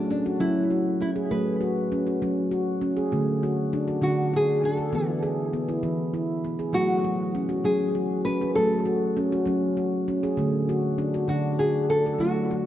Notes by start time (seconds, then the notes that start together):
Already playing: F#3 F#4
0.10 C#4 D4
0.26 F#4
0.40 F#3 C#4 E4
0.70 F#4
1.01 C#4 E4
1.16 G#4
1.31 F#3 A3 B4
1.61 F#4
1.92 C#4
2.07 F#4
2.22 F#3 C#4
2.51 F#4
2.81 C#4
2.97 G#4
3.12 D3 A3
3.43 F#4
3.73 D4
3.88 F#4
4.02 D3 D4 F#4
4.34 F#4 G#4
4.64 D4 A4
4.77 A4
4.93 E3 B3 E4
5.23 G#4
5.53 B3
5.69 E4
5.83 E3 B3
6.14 E4
6.45 B3
6.59 G#4
6.73 F#3 A3 F#4
7.04 F#4
7.35 C#4
7.49 F#4
7.64 F#3 C#4 G#4
7.95 F#4
8.25 C#4 B4
8.41 G#4
8.55 F#3 A3 A4
8.86 F#4
9.17 C#4
9.32 F#4
9.46 F#3 C#4
9.77 F#4
10.08 C#4
10.23 G#4
10.37 D3 A3
10.69 F#4
10.98 D4
11.14 F#4
11.28 D3 D4 F#4
11.59 F#4 G#4
11.90 D4 A4
12.06 A4
12.19 F#3 A3 F#4
12.51 F#4